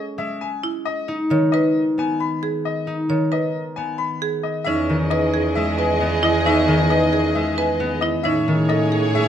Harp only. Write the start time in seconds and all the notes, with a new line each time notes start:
Already playing: G#3 C#4
0.18 G#3
1.08 D#4
1.30 D#3
1.98 B3
2.87 D#4
3.09 D#3
3.77 B3
4.67 C#4
4.89 D#3
5.56 G#3
6.00 B3
6.45 C#4
6.68 D#3
7.35 G#3
7.80 B3
8.25 C#4
8.48 D#3
9.15 G#3